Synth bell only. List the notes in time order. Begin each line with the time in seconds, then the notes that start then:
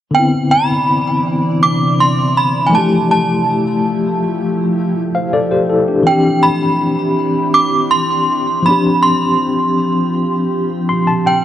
0.14 G5
0.51 B5
1.63 D6
2.00 C6
2.37 B5
2.67 G#5
2.75 A5
3.11 A5
6.07 G5
6.43 B5
7.54 D6
7.91 C6
8.66 B5
9.03 C6
11.27 G5